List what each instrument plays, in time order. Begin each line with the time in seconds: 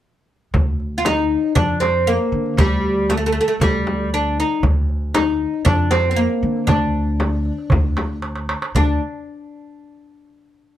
0.54 upright bass D2, frame drum, darbuka dum
0.80 darbuka ka
0.98 oud F4
1.05 oud D#4, darbuka tek, frame drum
1.44 darbuka ka
1.55 upright bass F2, oud D4, darbuka dum, frame drum
1.80 oud C4, darbuka tek, frame drum
2.07 oud A#3
2.32 upright bass D3
2.46 darbuka ka
2.57 upright bass D2, oud G3, frame drum, darbuka dum
2.85 darbuka ka
3.10 oud A3, darbuka tek, frame drum
3.17 oud A3
3.26 oud A3
3.32 oud A3
3.41 oud A3
3.48 oud A3, darbuka ka
3.60 upright bass D2, oud G3, frame drum, darbuka dum
3.87 frame drum
4.14 oud D4
4.40 oud D#4
4.51 darbuka ka
4.63 upright bass D2, darbuka dum, frame drum
4.89 darbuka ka
5.15 oud D#4, darbuka tek, frame drum
5.53 darbuka ka
5.65 upright bass F2, oud D4, frame drum, darbuka dum
5.91 oud C4, darbuka tek, frame drum
6.11 oud C4
6.16 oud A#3
6.43 upright bass D3
6.56 darbuka ka
6.67 upright bass D2, oud D4, frame drum, darbuka dum
6.95 darbuka ka
7.20 darbuka tek, frame drum
7.33 darbuka ka
7.45 darbuka ka
7.58 darbuka ka
7.70 upright bass D2, darbuka dum, frame drum
7.97 darbuka tek, frame drum
8.22 darbuka tek
8.36 darbuka ka
8.49 darbuka tek
8.62 darbuka ka
8.75 upright bass D2, oud D4, darbuka dum, frame drum